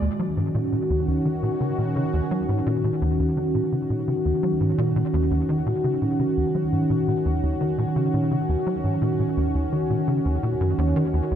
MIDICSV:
0, 0, Header, 1, 3, 480
1, 0, Start_track
1, 0, Key_signature, -6, "minor"
1, 0, Tempo, 705882
1, 12, Time_signature, 4, 2, 24, 8
1, 7721, End_track
2, 0, Start_track
2, 0, Title_t, "Analog synth pad"
2, 0, Program_c, 0, 89
2, 13, Note_on_c, 0, 51, 76
2, 13, Note_on_c, 0, 61, 69
2, 13, Note_on_c, 0, 66, 84
2, 7665, Note_off_c, 0, 51, 0
2, 7665, Note_off_c, 0, 66, 0
2, 7692, Note_on_c, 0, 63, 85
2, 7693, Note_on_c, 0, 53, 78
2, 7721, Note_off_c, 0, 53, 0
2, 7721, Note_off_c, 0, 61, 0
2, 7721, Note_off_c, 0, 63, 0
2, 7721, End_track
3, 0, Start_track
3, 0, Title_t, "Analog synth bass"
3, 0, Program_c, 1, 38
3, 12, Note_on_c, 1, 39, 81
3, 66, Note_off_c, 1, 39, 0
3, 132, Note_on_c, 1, 54, 74
3, 222, Note_off_c, 1, 54, 0
3, 252, Note_on_c, 1, 44, 75
3, 341, Note_off_c, 1, 44, 0
3, 371, Note_on_c, 1, 46, 97
3, 486, Note_off_c, 1, 46, 0
3, 492, Note_on_c, 1, 46, 79
3, 546, Note_off_c, 1, 46, 0
3, 612, Note_on_c, 1, 39, 97
3, 726, Note_off_c, 1, 39, 0
3, 732, Note_on_c, 1, 39, 77
3, 821, Note_off_c, 1, 39, 0
3, 851, Note_on_c, 1, 51, 76
3, 941, Note_off_c, 1, 51, 0
3, 971, Note_on_c, 1, 46, 83
3, 1025, Note_off_c, 1, 46, 0
3, 1091, Note_on_c, 1, 49, 73
3, 1181, Note_off_c, 1, 49, 0
3, 1212, Note_on_c, 1, 46, 73
3, 1326, Note_off_c, 1, 46, 0
3, 1332, Note_on_c, 1, 49, 78
3, 1386, Note_off_c, 1, 49, 0
3, 1452, Note_on_c, 1, 39, 83
3, 1506, Note_off_c, 1, 39, 0
3, 1572, Note_on_c, 1, 54, 71
3, 1662, Note_off_c, 1, 54, 0
3, 1692, Note_on_c, 1, 44, 75
3, 1782, Note_off_c, 1, 44, 0
3, 1812, Note_on_c, 1, 46, 97
3, 1926, Note_off_c, 1, 46, 0
3, 1932, Note_on_c, 1, 46, 80
3, 1986, Note_off_c, 1, 46, 0
3, 2051, Note_on_c, 1, 39, 100
3, 2166, Note_off_c, 1, 39, 0
3, 2172, Note_on_c, 1, 39, 74
3, 2261, Note_off_c, 1, 39, 0
3, 2292, Note_on_c, 1, 51, 77
3, 2382, Note_off_c, 1, 51, 0
3, 2411, Note_on_c, 1, 46, 83
3, 2465, Note_off_c, 1, 46, 0
3, 2532, Note_on_c, 1, 49, 72
3, 2621, Note_off_c, 1, 49, 0
3, 2652, Note_on_c, 1, 46, 78
3, 2766, Note_off_c, 1, 46, 0
3, 2773, Note_on_c, 1, 49, 79
3, 2826, Note_off_c, 1, 49, 0
3, 2892, Note_on_c, 1, 39, 81
3, 2946, Note_off_c, 1, 39, 0
3, 3013, Note_on_c, 1, 54, 74
3, 3102, Note_off_c, 1, 54, 0
3, 3132, Note_on_c, 1, 44, 75
3, 3222, Note_off_c, 1, 44, 0
3, 3252, Note_on_c, 1, 46, 105
3, 3366, Note_off_c, 1, 46, 0
3, 3373, Note_on_c, 1, 46, 82
3, 3426, Note_off_c, 1, 46, 0
3, 3492, Note_on_c, 1, 39, 98
3, 3606, Note_off_c, 1, 39, 0
3, 3612, Note_on_c, 1, 39, 77
3, 3701, Note_off_c, 1, 39, 0
3, 3733, Note_on_c, 1, 51, 70
3, 3822, Note_off_c, 1, 51, 0
3, 3852, Note_on_c, 1, 46, 82
3, 3906, Note_off_c, 1, 46, 0
3, 3972, Note_on_c, 1, 49, 76
3, 4062, Note_off_c, 1, 49, 0
3, 4092, Note_on_c, 1, 46, 75
3, 4206, Note_off_c, 1, 46, 0
3, 4212, Note_on_c, 1, 49, 76
3, 4266, Note_off_c, 1, 49, 0
3, 4333, Note_on_c, 1, 39, 81
3, 4386, Note_off_c, 1, 39, 0
3, 4452, Note_on_c, 1, 54, 76
3, 4542, Note_off_c, 1, 54, 0
3, 4572, Note_on_c, 1, 44, 79
3, 4662, Note_off_c, 1, 44, 0
3, 4692, Note_on_c, 1, 46, 101
3, 4806, Note_off_c, 1, 46, 0
3, 4813, Note_on_c, 1, 46, 84
3, 4866, Note_off_c, 1, 46, 0
3, 4933, Note_on_c, 1, 39, 98
3, 5047, Note_off_c, 1, 39, 0
3, 5053, Note_on_c, 1, 39, 77
3, 5142, Note_off_c, 1, 39, 0
3, 5172, Note_on_c, 1, 51, 76
3, 5262, Note_off_c, 1, 51, 0
3, 5292, Note_on_c, 1, 46, 83
3, 5346, Note_off_c, 1, 46, 0
3, 5412, Note_on_c, 1, 49, 75
3, 5502, Note_off_c, 1, 49, 0
3, 5533, Note_on_c, 1, 46, 74
3, 5647, Note_off_c, 1, 46, 0
3, 5653, Note_on_c, 1, 49, 73
3, 5706, Note_off_c, 1, 49, 0
3, 5772, Note_on_c, 1, 39, 80
3, 5826, Note_off_c, 1, 39, 0
3, 5893, Note_on_c, 1, 54, 79
3, 5982, Note_off_c, 1, 54, 0
3, 6012, Note_on_c, 1, 44, 77
3, 6101, Note_off_c, 1, 44, 0
3, 6131, Note_on_c, 1, 46, 100
3, 6246, Note_off_c, 1, 46, 0
3, 6252, Note_on_c, 1, 46, 83
3, 6306, Note_off_c, 1, 46, 0
3, 6371, Note_on_c, 1, 39, 100
3, 6486, Note_off_c, 1, 39, 0
3, 6491, Note_on_c, 1, 39, 77
3, 6581, Note_off_c, 1, 39, 0
3, 6612, Note_on_c, 1, 51, 77
3, 6702, Note_off_c, 1, 51, 0
3, 6733, Note_on_c, 1, 46, 80
3, 6786, Note_off_c, 1, 46, 0
3, 6852, Note_on_c, 1, 49, 74
3, 6941, Note_off_c, 1, 49, 0
3, 6972, Note_on_c, 1, 39, 77
3, 7062, Note_off_c, 1, 39, 0
3, 7092, Note_on_c, 1, 46, 77
3, 7182, Note_off_c, 1, 46, 0
3, 7212, Note_on_c, 1, 42, 83
3, 7301, Note_off_c, 1, 42, 0
3, 7332, Note_on_c, 1, 39, 99
3, 7446, Note_off_c, 1, 39, 0
3, 7453, Note_on_c, 1, 51, 73
3, 7506, Note_off_c, 1, 51, 0
3, 7572, Note_on_c, 1, 39, 71
3, 7626, Note_off_c, 1, 39, 0
3, 7692, Note_on_c, 1, 37, 80
3, 7721, Note_off_c, 1, 37, 0
3, 7721, End_track
0, 0, End_of_file